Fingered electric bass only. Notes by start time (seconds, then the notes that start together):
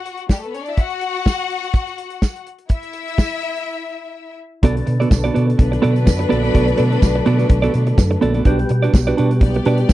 4.63 B1
4.88 B2
5.11 B1
5.36 B2
5.59 B1
5.84 B2
6.07 F#2
6.31 A#1
6.55 B1
6.79 B2
7.02 B1
7.27 B2
7.50 B1
7.75 B2
7.98 F#2
8.23 A#1
8.46 B1
8.70 B2
8.94 B1
9.19 B2
9.41 B1
9.66 B2
9.90 F#2